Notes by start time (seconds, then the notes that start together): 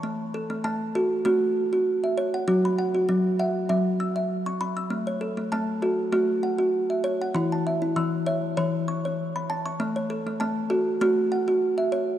Already playing: C#6
0.03 A3
0.34 A4
0.50 A3
0.64 A3 A5
0.95 F#4 A4
1.25 A3 F#4
1.73 F#4
2.04 E5
2.17 C#5
2.34 F#5
2.48 F#3 F#4
2.65 B5
2.78 F#5
2.95 F#4
3.09 F#3
3.39 E5 F#5
3.69 F#3 E5
4.00 E6
4.16 E5
4.46 C#6
4.61 B5
4.77 E6
4.90 A3
5.07 C#5
5.21 A4
5.37 A3
5.52 A3 A5
5.82 F#4 A4
6.12 A3 F#4
6.43 F#5
6.58 F#4
6.90 E5
7.04 C#5
7.22 F#5
7.35 E3 E4
7.52 A5
7.67 E5
7.82 E4
7.96 E3 E6
8.26 C#5 E5
8.57 E3 C#5
8.88 C#6
9.05 C#5
9.36 B5
9.50 A5
9.66 C#6
9.80 A3
9.96 C#5
10.10 A4
10.27 A3
10.40 A3 A5
10.70 F#4 A4
11.01 A3 F#4
11.32 F#5
11.48 F#4
11.78 E5
11.92 C#5